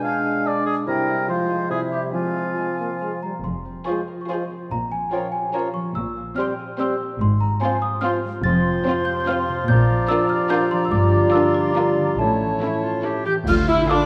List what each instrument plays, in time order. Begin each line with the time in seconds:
Already playing: harp B2 D4, french horn section G#3 D4, flute G#5
0.04 clarinet D4, harp F4, oboe F5
0.25 harp G#4
0.45 clarinet D4, harp D5, oboe D5
0.66 harp G#4, oboe G#4
0.86 harp C3, bassoon C3, french horn section G3 E4, clarinet E4, oboe A#4, flute G5
1.08 harp E4 G4
1.27 bassoon F3, harp F3, french horn section G#3 F4, clarinet F4, oboe C5, flute F5
1.49 harp F4 G#4
1.69 bassoon C3, harp C3, french horn section G3 E4, clarinet E4, oboe G#4, flute E5
1.91 harp E4 G4, oboe G4
2.13 bassoon F3, harp F3, french horn section G#3 F4, clarinet C4, oboe F4, flute G#5
2.36 harp F4
2.57 french horn section G#3, harp G#4
2.79 french horn section A#3, harp C5
3.01 french horn section G#3, harp F5
3.22 french horn section G3, harp C5, celesta A#5
3.44 double bass section F1, cello section F2, harp F3, celesta C6
3.65 harp C4
3.85 bassoon F3, french horn section G#3 F4, clarinet F4, viola section F4, harp G#4, violin section G#4 C5, oboe C5, flute G#5, celesta C#6
4.08 harp A#4
4.21 celesta C#6
4.28 bassoon F3, french horn section G#3 F4, viola section F4, clarinet F4, harp G#4, violin section G#4 C5, oboe C5, flute G#5, celesta C6
4.50 harp C4
4.71 double bass section A#1, cello section A#2, harp A#2, celesta A#5
4.92 harp F3, celesta G#5
5.11 bassoon F3, french horn section C#4 F4, clarinet F4, viola section F4, harp F4, violin section A#4 C#5, oboe C#5, celesta G5, flute A#5
5.32 harp G4, celesta G#5
5.53 bassoon F3, french horn section C#4 F4, viola section F4, harp F4, clarinet F4, violin section A#4 C#5, oboe C#5, celesta A#5, flute A#5
5.74 harp F3, celesta C#6
5.95 double bass section A#1, cello section A#2, harp A#2, celesta E6
6.17 harp A#3
6.36 bassoon G3, clarinet C4, french horn section C4 G4, viola section C4, harp G4, violin section G4 C5, oboe C5, flute C6, celesta F6
6.59 harp G#4
6.79 bassoon G3, french horn section C4 G4, clarinet C4, viola section C4, harp G4, violin section G4 C5, oboe C5, flute C6, celesta E6
7.01 harp A#3
7.21 double bass section G#1, cello section G#2, harp G#2, celesta C6
7.40 harp G#3, celesta A#5
7.61 bassoon F3, viola section C4, french horn section C4 F4, clarinet F4, violin section F4 C5, harp F4, oboe C5, celesta G#5, flute C6
7.82 harp G4, celesta D#6
8.01 bassoon F3, viola section C4, french horn section C4 F4, clarinet F4, violin section F4 C5, harp F4, oboe C5, flute C6, celesta F6
8.25 harp G#3
8.44 double bass section F1, cello section F2, harp F2, bassoon F3, clarinet F4, oboe C5, flute C6, celesta A6
8.66 harp C3
8.85 viola section C4, french horn section C4 F4, harp F4, violin section F4 C5
9.05 harp G4, celesta G6
9.20 celesta G6
9.27 viola section C4, french horn section C4 F4, violin section F4 C5, harp F4, celesta F6
9.49 harp C3
9.68 double bass section A#1, cello section A#2, harp A#2, oboe D5, flute A#5, celesta G6
9.90 harp F3
10.08 french horn section D4 F4, viola section D4, violin section F4 A#4, harp F4, celesta E6
10.29 harp G4, celesta F6
10.50 viola section D4, french horn section D4 F4, harp F4, violin section F4 A#4, celesta G6
10.71 harp F3, celesta C6
10.85 celesta E6
10.91 double bass section G1, cello section G2, harp G2, bassoon G3, french horn section D4 F4, clarinet F4, celesta D6
11.14 harp D3
11.32 viola section D4, violin section F4 A#4, harp F4, celesta E6
11.54 harp G4, celesta D6
11.75 viola section D4, french horn section D4 F4, violin section F4 A#4, harp F4, celesta A#5
11.98 harp D3
12.18 double bass section A1, harp A2, cello section A2, bassoon A3, french horn section C#4 E4, clarinet E4, oboe C#5, celesta A5, flute A5
12.40 harp E3
12.62 viola section C#4, harp E4, clarinet E4, violin section E4 A4
12.83 harp F4, clarinet F4
13.04 viola section C#4, violin section E4 A4, harp E4, clarinet G4
13.25 harp E3, viola section G4, french horn section G4, clarinet G4, oboe G5, celesta G6, flute G6
13.44 cello section D2, double bass section D2, harp D3, french horn section F4, viola section F4, oboe F5, celesta F6, flute F6, concert bass drum, crash
13.49 clarinet F4
13.67 harp D4, french horn section E4, viola section E4, clarinet E4, oboe E5, celesta E6, flute E6
13.89 viola section D4, french horn section D4, clarinet D4, violin section F4 A4, bassoon F4, harp F4, oboe D5, flute D6, celesta D6